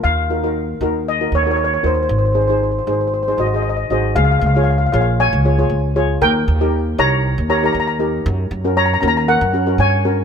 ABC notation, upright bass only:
X:1
M:4/4
L:1/16
Q:"Swing 16ths" 1/4=117
K:Db
V:1 name="Upright bass" clef=bass
E,,6 E,,4 E,,4 E,,2 | A,,,6 A,,,4 A,,,4 A,,,2 | D,,2 D,,4 B,,,3 D,,3 D,,4 | E,,2 E,,4 C,,3 E,,3 E,,4 |
G,,2 G,,4 E,,3 G,,3 =G,,4 |]